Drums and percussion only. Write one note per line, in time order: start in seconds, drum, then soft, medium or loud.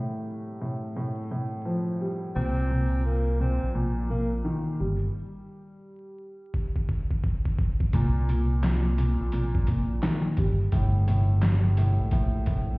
6.54 kick medium
6.76 kick medium
6.89 kick medium
7.11 kick medium
7.24 kick medium
7.45 kick medium
7.59 kick loud
7.80 kick medium
7.93 kick loud
7.93 closed hi-hat medium
8.29 closed hi-hat medium
8.63 snare loud
8.63 clap medium
8.63 closed hi-hat medium
8.98 closed hi-hat medium
9.32 closed hi-hat medium
9.55 kick loud
9.67 kick medium
9.67 closed hi-hat medium
10.03 snare loud
10.03 clap medium
10.03 closed hi-hat medium
10.37 kick medium
10.37 closed hi-hat medium
10.72 kick loud
10.72 closed hi-hat medium
11.08 closed hi-hat medium
11.42 snare loud
11.42 clap medium
11.42 closed hi-hat medium
11.77 closed hi-hat medium
12.11 kick loud
12.11 closed hi-hat medium
12.46 kick medium
12.46 closed hi-hat medium